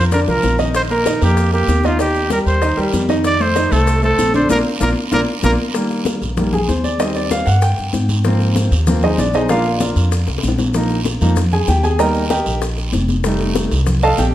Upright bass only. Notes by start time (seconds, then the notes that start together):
Already playing: F2
0.28 C2
0.44 A#1
1.22 F2
1.68 D#2
2.46 D#2
2.78 D#2
2.93 F2
3.72 C2
4.18 A#1
4.50 A#1
4.81 A#1
5.12 A#1
5.43 A#1
6.22 A#1
6.69 D#2
7.47 G2
7.79 G2
7.94 G#2
8.71 D#2
9.18 A#1
9.96 F2
10.28 C2
10.44 A#1
11.21 F2
11.68 D#2
12.46 A#1
12.93 F1
13.71 C2
14.18 A#1